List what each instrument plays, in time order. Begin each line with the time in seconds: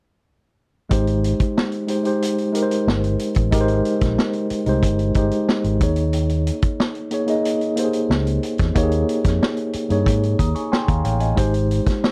0.89 fingered electric bass G#1, tine electric piano G#3 D#4 G4 C5, kick, closed hi-hat
1.07 closed hi-hat
1.24 closed hi-hat
1.40 muted fingered electric bass stroke, kick, closed hi-hat
1.58 snare
1.72 closed hi-hat
1.87 tine electric piano G#3 D#4 G4 C5, closed hi-hat
2.04 tine electric piano G#3 D#4 G4 C5, closed hi-hat
2.22 closed hi-hat
2.38 closed hi-hat
2.53 tine electric piano G#3 D#4 G4 A#4, closed hi-hat
2.62 tine electric piano C5
2.71 closed hi-hat
2.87 fingered electric bass G1, snare
3.04 closed hi-hat
3.19 closed hi-hat
3.35 fingered electric bass A1, kick, closed hi-hat
3.51 fingered electric bass G#1, tine electric piano G#3 D#4 G4 A#4, kick, closed hi-hat
3.61 tine electric piano C5
3.68 closed hi-hat
3.85 closed hi-hat
4.01 fingered electric bass A#1, kick, snare, closed hi-hat
4.19 snare
4.33 closed hi-hat
4.50 muted fingered electric bass stroke, closed hi-hat
4.66 fingered electric bass C2, tine electric piano G#3 D#4 G4 C5, closed hi-hat
4.83 fingered electric bass G1, kick, closed hi-hat
4.99 closed hi-hat
5.14 fingered electric bass G1, tine electric piano G#3 D#4 G4 C5, kick, closed hi-hat
5.31 closed hi-hat
5.49 snare
5.64 fingered electric bass G#1, closed hi-hat
5.80 fingered electric bass D#2, tine electric piano A#3 D#4 G#4 C#5, kick, closed hi-hat
5.96 closed hi-hat
6.13 closed hi-hat
6.29 closed hi-hat
6.47 closed hi-hat
6.62 muted fingered electric bass stroke, kick, closed hi-hat
6.80 snare
6.95 closed hi-hat
7.11 tine electric piano A#3 D#4 G#4 C#5, closed hi-hat
7.27 tine electric piano A#3 D#4 G#4 D#5, closed hi-hat
7.45 closed hi-hat
7.61 closed hi-hat
7.76 tine electric piano A#3 D#4 G4 C5, closed hi-hat
7.85 tine electric piano G#4
7.93 closed hi-hat
8.10 fingered electric bass C#2, snare
8.27 closed hi-hat
8.43 closed hi-hat
8.58 fingered electric bass E2, kick, snare, closed hi-hat
8.75 fingered electric bass D#2, tine electric piano A#3 D#4 G4 C#5, kick, closed hi-hat
8.83 tine electric piano G#4
8.91 closed hi-hat
9.09 closed hi-hat
9.24 fingered electric bass F2, kick, snare, closed hi-hat
9.43 snare
9.57 closed hi-hat
9.73 muted fingered electric bass stroke, closed hi-hat
9.89 fingered electric bass G2, tine electric piano A#3 D#4 G#4 C#5, closed hi-hat
10.06 fingered electric bass G#2, kick, closed hi-hat
10.23 closed hi-hat
10.39 fingered electric bass D#2, tine electric piano A#5 D#6, kick, closed hi-hat
10.55 tine electric piano G#5 C#6, closed hi-hat
10.72 tine electric piano G5 G#5 C6, snare
10.88 fingered electric bass D#2, tine electric piano F5 A#5, kick, closed hi-hat
11.04 fingered electric bass A1, tine electric piano C#5 F5 G5, closed hi-hat
11.20 tine electric piano D#5 G#5, closed hi-hat
11.35 fingered electric bass G#1, tine electric piano G#3 D#4 G4 C5, kick, closed hi-hat
11.54 closed hi-hat
11.71 closed hi-hat
11.86 kick, snare, closed hi-hat
12.04 snare